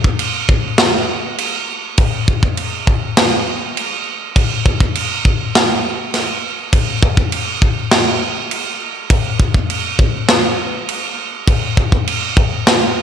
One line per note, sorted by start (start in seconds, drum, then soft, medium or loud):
0.04 kick medium
0.19 crash medium
0.49 kick medium
0.78 snare loud
0.78 crash medium
1.38 crash medium
1.98 kick loud
1.98 crash medium
2.28 kick medium
2.43 kick medium
2.57 crash medium
2.87 kick medium
3.17 snare loud
3.17 crash medium
3.77 crash medium
4.36 kick loud
4.36 crash medium
4.66 kick medium
4.80 kick medium
4.95 crash medium
5.25 kick medium
5.55 snare loud
5.55 crash medium
6.14 snare soft
6.14 crash medium
6.73 kick loud
6.73 crash medium
7.03 kick loud
7.17 kick medium
7.32 crash medium
7.62 kick medium
7.91 snare loud
7.91 crash medium
8.51 crash medium
9.10 kick loud
9.10 crash medium
9.40 kick medium
9.54 kick medium
9.70 crash medium
9.99 kick medium
10.28 snare loud
10.28 crash medium
10.89 crash medium
11.48 kick loud
11.48 crash medium
11.77 kick loud
11.92 kick medium
12.08 crash medium
12.37 kick medium
12.67 snare loud
12.67 crash medium